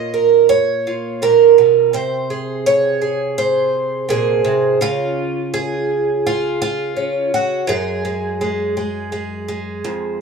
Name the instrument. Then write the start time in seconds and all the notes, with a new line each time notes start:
twelve-string acoustic guitar
Already playing: A#2 F4 C#5 D#5
0.14 A#4
0.49 C#5
0.87 F4
1.22 A#2 A#4
1.58 B2
1.93 C3 C5
2.30 G#4
2.66 C#5
3.02 G#4
3.38 C5
4.09 A#2 G#4
4.44 C3
4.81 C#3 F4
5.54 G#4
6.27 F4
6.62 F4
6.96 C#4
7.34 F#4
7.67 F#2 G#3 G#4
8.05 G#3
8.41 G#3
8.77 G#3
9.12 G#3
9.48 G#3
9.84 F2